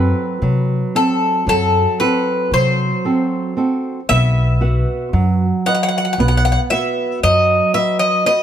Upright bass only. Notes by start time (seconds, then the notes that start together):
Already playing: F#2
0.42 C3
1.47 F#2
2.51 C3
4.09 B1
5.13 F#2
6.18 B1
7.23 F#2